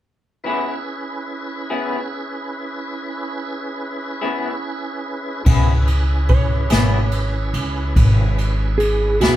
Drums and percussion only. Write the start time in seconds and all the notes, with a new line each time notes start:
5.46 kick, crash
5.87 ride
6.29 kick, ride
6.70 snare, ride
7.11 ride
7.54 ride
7.96 kick, ride
8.38 ride
8.80 ride
9.21 snare, ride